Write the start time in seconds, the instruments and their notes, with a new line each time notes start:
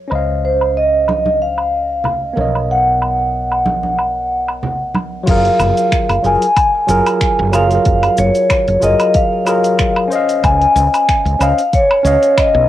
0.08 fretless electric bass C#2, tine electric piano C#4 C5, low woodblock
0.12 tine electric piano D#5 F5
0.45 vibraphone C5
0.61 low woodblock
0.77 vibraphone D#5
1.08 high conga, low woodblock
1.26 high conga
1.42 vibraphone F5
1.58 low woodblock
2.04 low conga, low woodblock
2.33 fretless electric bass B1, tine electric piano B3 A#4, high conga
2.38 tine electric piano C#5 D#5
2.55 low woodblock
2.71 vibraphone F#5
3.02 low woodblock
3.52 low woodblock
3.66 high conga
3.83 high conga
3.99 low woodblock
4.48 low woodblock
4.63 low conga
4.95 high conga, low woodblock
5.24 tine electric piano F#3 F4, open hi-hat, crash, shaker
5.28 fretless electric bass F#1, tine electric piano G#4 A#4, vibraphone F5, kick
5.45 open hi-hat
5.60 fretless electric bass F#1, low woodblock, shaker
5.77 open hi-hat, shaker
5.92 finger snap, kick, open hi-hat, shaker
6.09 fretless electric bass F#1, open hi-hat, low woodblock
6.22 fretless electric bass F#1, tine electric piano F#3 F4 G#4 A#4, vibraphone G#5, shaker
6.42 open hi-hat, shaker
6.56 kick, open hi-hat, low woodblock, shaker
6.87 fretless electric bass F#1, tine electric piano F#3 F4 G#4 A#4, shaker
7.06 open hi-hat, low woodblock, shaker
7.21 finger snap, kick, open hi-hat, shaker
7.39 fretless electric bass F#1
7.51 tine electric piano F#3 F4 G#4 A#4, vibraphone F5, low woodblock, shaker
7.67 tine electric piano F#3 F4, open hi-hat, shaker
7.72 tine electric piano G#4 A#4
7.85 fretless electric bass F#1, kick, open hi-hat, shaker
8.03 open hi-hat, low woodblock
8.17 fretless electric bass F#1, vibraphone C#5, shaker
8.35 open hi-hat, shaker
8.50 finger snap, kick, open hi-hat, low woodblock, shaker
8.68 fretless electric bass F#1, open hi-hat
8.80 fretless electric bass F#1, tine electric piano F#3 F4 G#4, vibraphone D#5, shaker
8.84 tine electric piano A#4
9.00 open hi-hat, low woodblock, shaker
9.14 vibraphone F5, kick, open hi-hat, shaker
9.45 tine electric piano F#3 F4 G#4 A#4, low woodblock, shaker
9.64 open hi-hat, shaker
9.79 finger snap, kick, open hi-hat, shaker
9.96 low woodblock
10.08 tine electric piano C#4 C5, shaker
10.13 tine electric piano D#5 F5
10.29 open hi-hat, shaker
10.44 fretless electric bass C#2, vibraphone G#5, kick, open hi-hat, low woodblock, shaker
10.62 open hi-hat
10.76 fretless electric bass C#2, shaker
10.94 open hi-hat, low woodblock, shaker
11.09 finger snap, kick, open hi-hat, shaker
11.25 fretless electric bass C#2, open hi-hat
11.39 fretless electric bass C#2, tine electric piano C#4 C5 D#5 F5, vibraphone F5, low woodblock, shaker
11.58 open hi-hat, shaker
11.73 vibraphone C#5, kick, open hi-hat, shaker
11.91 low woodblock
12.03 fretless electric bass C#2, tine electric piano C#4 C#5 D#5, shaker
12.07 tine electric piano F5
12.23 open hi-hat, shaker
12.38 vibraphone D#5, finger snap, kick, open hi-hat, low woodblock, shaker
12.54 fretless electric bass B1